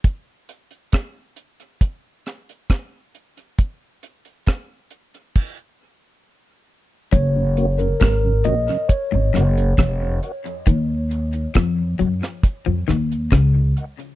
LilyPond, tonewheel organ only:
<<
  \new Staff \with { instrumentName = "Tonewheel organ" } { \time 4/4 \key ges \major \tempo 4 = 68 r1 | r1 | r8 <bes des' ges'>8 r8 <bes des' ges'>8 r8 <bes des' ges'>8 r8 <bes des' ges'>8 | r8 <bes ees' ges'>8 r8 <bes ees' ges'>8 r8 <bes ees' ges'>8 r8 <bes ees' ges'>8 | }
  \new Staff \with { instrumentName = "Tonewheel organ" } { \clef bass \time 4/4 \key ges \major r1 | r1 | r16 <ges, des>16 r16 <ges, des>16 r16 <ges, des>16 r16 <ges, des>16 r16 <ges, des>16 r16 <ges, des>16 r16 <ges, des>16 r16 <ges, des>16 | r16 bes,16 r2 r16 bes,16 r16 bes,16 r16 <ees, bes,>16 | }
>>